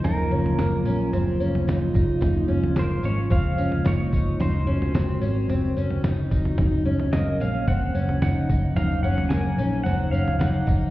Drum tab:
TB |x---x-x-x-x-x-x-|x---x-x-x-x-x-x-|x---x-x-x-x-x-x-|x---x-x-x-x-x-x-|
SD |----o-------o---|----o-------o---|----o-------o---|----o-------o---|
FT |o--o----o--o----|o--o----o--o----|o--o----o--o---o|o--o----o--o----|
BD |--------------o-|o-------o-----o-|--------------o-|o-------o-----o-|

TB |x---x-x-x-x-x-x-|
SD |----o-------o---|
FT |o--o----o--o----|
BD |--------------o-|